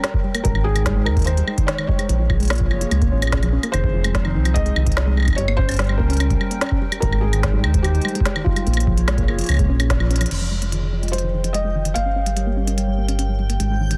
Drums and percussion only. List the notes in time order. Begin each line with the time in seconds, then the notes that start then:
0.04 snare, closed hi-hat, high woodblock
0.14 kick
0.35 closed hi-hat, high woodblock
0.45 kick, closed hi-hat
0.55 high woodblock
0.76 closed hi-hat, high woodblock
0.86 kick, snare, closed hi-hat
1.06 high woodblock
1.17 kick, closed hi-hat
1.19 closed hi-hat
1.22 closed hi-hat
1.24 closed hi-hat
1.27 closed hi-hat, high woodblock
1.37 closed hi-hat
1.48 high woodblock
1.58 kick, closed hi-hat
1.68 snare, closed hi-hat
1.78 high woodblock
1.89 kick
1.99 closed hi-hat, high woodblock
2.09 closed hi-hat
2.30 kick, high woodblock
2.40 closed hi-hat
2.43 closed hi-hat
2.45 closed hi-hat
2.48 snare, closed hi-hat
2.50 closed hi-hat, high woodblock
2.55 closed hi-hat
2.58 kick, closed hi-hat
2.71 high woodblock
2.81 closed hi-hat
2.91 closed hi-hat, high woodblock
3.02 kick, closed hi-hat
3.22 closed hi-hat, high woodblock
3.27 high woodblock
3.32 kick, snare, closed hi-hat, high woodblock
3.37 high woodblock
3.43 closed hi-hat, high woodblock
3.63 closed hi-hat, high woodblock
3.74 closed hi-hat, high woodblock
3.84 kick
4.04 closed hi-hat, high woodblock
4.15 kick, snare, closed hi-hat
4.25 high woodblock
4.45 closed hi-hat, high woodblock
4.56 kick, closed hi-hat
4.66 closed hi-hat
4.76 high woodblock
4.87 kick, closed hi-hat
4.92 closed hi-hat
4.97 snare, high woodblock
5.17 high woodblock
5.20 high woodblock
5.23 high woodblock
5.25 kick, closed hi-hat, high woodblock
5.28 high woodblock
5.30 high woodblock
5.33 high woodblock
5.35 closed hi-hat, high woodblock
5.48 high woodblock
5.58 kick
5.69 closed hi-hat, high woodblock
5.71 closed hi-hat
5.74 closed hi-hat
5.76 snare, closed hi-hat
5.79 closed hi-hat
5.84 closed hi-hat
5.87 closed hi-hat, high woodblock
6.00 kick
6.10 closed hi-hat
6.13 closed hi-hat
6.17 closed hi-hat
6.20 closed hi-hat, high woodblock
6.30 kick, closed hi-hat
6.41 high woodblock
6.51 closed hi-hat
6.61 snare, closed hi-hat, high woodblock
6.64 high woodblock
6.66 high woodblock
6.69 kick, high woodblock
6.92 closed hi-hat, high woodblock
7.02 kick, closed hi-hat
7.13 high woodblock
7.33 closed hi-hat, high woodblock
7.43 kick, snare, closed hi-hat
7.64 high woodblock
7.74 kick, closed hi-hat
7.84 closed hi-hat, high woodblock
7.95 closed hi-hat
8.02 closed hi-hat, high woodblock
8.08 closed hi-hat
8.15 closed hi-hat
8.20 kick
8.25 snare, closed hi-hat
8.36 high woodblock
8.46 kick
8.56 closed hi-hat, high woodblock
8.67 closed hi-hat
8.74 closed hi-hat, high woodblock
8.80 closed hi-hat
8.87 kick
8.97 closed hi-hat
9.08 snare, closed hi-hat, high woodblock
9.18 kick, closed hi-hat
9.28 high woodblock
9.39 closed hi-hat
9.41 closed hi-hat
9.44 closed hi-hat
9.46 closed hi-hat
9.49 closed hi-hat, high woodblock
9.52 closed hi-hat, high woodblock
9.54 closed hi-hat, high woodblock
9.59 kick, closed hi-hat
9.80 closed hi-hat, high woodblock
9.90 kick, snare, closed hi-hat
10.00 high woodblock
10.11 closed hi-hat
10.16 closed hi-hat
10.21 closed hi-hat, high woodblock
10.26 closed hi-hat
10.31 closed hi-hat, crash
10.62 closed hi-hat
10.72 closed hi-hat
11.03 closed hi-hat
11.08 closed hi-hat
11.13 closed hi-hat
11.18 closed hi-hat
11.44 closed hi-hat
11.54 closed hi-hat
11.85 closed hi-hat
11.96 closed hi-hat
12.26 closed hi-hat
12.37 closed hi-hat
12.67 closed hi-hat
12.78 closed hi-hat
13.09 closed hi-hat
13.19 closed hi-hat
13.50 closed hi-hat
13.60 closed hi-hat
13.91 closed hi-hat